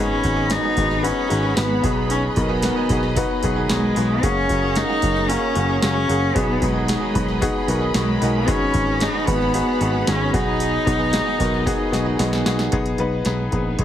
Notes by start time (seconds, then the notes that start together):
Already playing: G#1 G#2 D#3 F#3 B3 D#4 F#4 G#4 F#5 B5
0.00 C#4 D#4 G#4
0.24 G#1 B3 D#4 F#4 B4, kick, open hi-hat
0.36 G#2 D#3 F#3 B3 D#4 G#4
0.50 B3 D#4 F#4 G#4, snare, open hi-hat
0.63 G#2 D#3 F#3 B3 D#4 G#4
0.76 G#1 B3 D#4 F#4 G#4, kick, open hi-hat
0.91 snare
1.02 F#3 B3 C#4 D#4 F#4 G#4 B4, open hi-hat
1.28 G#1 B3 D#4 F#4 G#4, open hi-hat
1.43 G#2 D#3 F#3 B3 D#4 G#4
1.56 G#1 B3 D#4 F#4 B4, snare, open hi-hat
1.82 B1 B2 F#3 B3 D#4 F#4 G#4 D#5, kick, open hi-hat
2.08 F#3 B3 C#4 D#4 G#4, open hi-hat
2.36 B1 B3 D#4 F#4 A#4, kick, open hi-hat
2.49 B2 D#3 F#3 B3 D#4 G#4
2.62 B3 D#4 F#4 A#4, snare, open hi-hat
2.76 B2 D#3 F#3 B3 D#4 G#4
2.89 B1 B3 D#4 F#4 G#4, kick, open hi-hat
3.03 snare
3.15 F#3 B3 D#4 F#4 G#4 B4, kick, open hi-hat
3.43 B1 B3 D#4 F#4 G#4, kick, open hi-hat
3.56 B2 D#3 F#3 B3 D#4 G#4
3.69 B1 G#3 B3 D#4 F#4 G#4, snare, open hi-hat
3.95 B1 F#3 B3 D#4 F#4 G#4, open hi-hat
4.22 F#1 C#3 A#3 C#4 F#4 G#4 F#5 A#5, kick, open hi-hat
4.49 F#1 A#3 C#4 F#4 G#4, kick, open hi-hat
4.62 F#3 A#3 C#4 F#4 G#4
4.75 A#3 C#4 D#4 F#4 A#4, snare, open hi-hat
4.88 F#3 A#3 C#4 F#4 G#4
5.01 F#1 A#3 C#4 F#4 A#4, kick, open hi-hat
5.17 snare
5.28 A#3 C#4 F#4 G#4 A#4, open hi-hat
5.55 F#1 A#3 C#4 F#4 A#4, open hi-hat
5.69 F#3 A#3 C#4 F#4 G#4
5.82 F#1 A#3 C#4 F#4 G#4, snare, open hi-hat
6.07 F#1 A#3 C#4 F#4 G#4, open hi-hat
6.34 B1 B2 F#3 B3 D#4 F#4 G#4 D#5 B5, kick, open hi-hat
6.61 B1 G#3 B3 D#4 F#4 G#4, kick, open hi-hat
6.74 B2 D#3 F#3 B3 D#4 G#4
6.87 B3 D#4 F#4 G#4, snare, open hi-hat
7.00 B2 D#3 F#3 B3 D#4 G#4
7.14 B1 B3 D#4 F#4 B4, kick, open hi-hat
7.29 snare
7.40 F#3 B3 D#4 F#4 G#4, kick, open hi-hat
7.68 B1 B3 D#4 F#4 A#4, open hi-hat
7.80 B2 D#3 F#3 B3 D#4 G#4
7.94 B1 G#3 B3 D#4 F#4 G#4, snare, open hi-hat
8.20 B1 F#3 B3 D#4 F#4 G#4 A#4, open hi-hat
8.47 G#1 G#2 D#3 F#3 B3 C#4 D#4 F#4 G#4 F#5, kick, open hi-hat
8.74 G#1 B3 D#4 F#4 G#4, kick, open hi-hat
8.87 G#2 D#3 F#3 B3 F#4 G#4
9.00 B3 D#4 F#4 G#4, snare, open hi-hat
9.13 G#2 D#3 F#3 B3 F#4 G#4
9.26 G#1 B3 D#4 F#4 B4, kick, open hi-hat
9.41 snare
9.52 F#3 B3 D#4 F#4 G#4, open hi-hat
9.81 G#1 B3 D#4 F#4 G#4, open hi-hat
9.93 G#2 D#3 F#3 B3 F#4 G#4
10.06 G#1 B3 C#4 D#4 F#4 G#4, snare, open hi-hat
10.32 B1 B2 F#3 B3 D#4 F#4 G#4 D#5, kick, open hi-hat
10.58 F#3 B3 D#4 G#4, open hi-hat
10.86 B1 B3 D#4 F#4 G#4, kick, open hi-hat
10.98 B2 D#3 F#3 B3 D#4 G#4
11.12 B3 D#4 F#4 G#4, snare, open hi-hat
11.25 B2 D#3 F#3 B3 D#4 G#4
11.39 B1 B3 D#4 F#4 A#4, kick, open hi-hat
11.54 snare
11.65 F#3 B3 D#4 F#4 G#4, kick, snare, open hi-hat
11.92 B1 B3 D#4 F#4 G#4 G#5, snare, open hi-hat
12.05 B2 D#3 F#3 B3 D#4 G#4
12.19 B1 B3 D#4 F#4 G#4 F#5, snare, open hi-hat
12.33 snare
12.44 B1 F#3 B3 D#4 F#4 G#4, snare, open hi-hat
12.59 snare
12.72 B1 G#3 B3 D#4 G#4, kick, closed hi-hat
12.86 closed hi-hat
12.98 B1 B3 D#4 B4, closed hi-hat
13.25 B1 B3 D#4 G#4, snare, closed hi-hat
13.51 A#1 B3 D#4 G#4, kick, closed hi-hat
13.79 B1 B3 D#4 G#4, kick, closed hi-hat